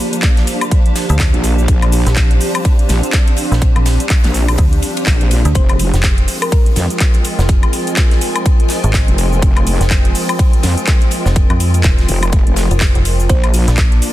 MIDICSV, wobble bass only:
0, 0, Header, 1, 2, 480
1, 0, Start_track
1, 0, Tempo, 483871
1, 1669, Time_signature, 4, 2, 24, 8
1, 14015, End_track
2, 0, Start_track
2, 0, Title_t, "Wobble bass"
2, 0, Program_c, 0, 39
2, 1329, Note_on_c, 0, 34, 97
2, 1653, Note_off_c, 0, 34, 0
2, 1669, Note_on_c, 0, 34, 90
2, 2027, Note_off_c, 0, 34, 0
2, 2869, Note_on_c, 0, 34, 92
2, 2987, Note_off_c, 0, 34, 0
2, 4209, Note_on_c, 0, 34, 96
2, 4533, Note_off_c, 0, 34, 0
2, 5028, Note_on_c, 0, 34, 95
2, 5386, Note_off_c, 0, 34, 0
2, 5508, Note_on_c, 0, 29, 94
2, 5866, Note_off_c, 0, 29, 0
2, 6709, Note_on_c, 0, 41, 93
2, 6827, Note_off_c, 0, 41, 0
2, 9010, Note_on_c, 0, 29, 98
2, 9333, Note_off_c, 0, 29, 0
2, 9348, Note_on_c, 0, 29, 93
2, 9706, Note_off_c, 0, 29, 0
2, 10549, Note_on_c, 0, 41, 96
2, 10667, Note_off_c, 0, 41, 0
2, 11988, Note_on_c, 0, 29, 95
2, 12346, Note_off_c, 0, 29, 0
2, 12369, Note_on_c, 0, 29, 94
2, 12586, Note_off_c, 0, 29, 0
2, 13189, Note_on_c, 0, 34, 91
2, 13547, Note_off_c, 0, 34, 0
2, 14015, End_track
0, 0, End_of_file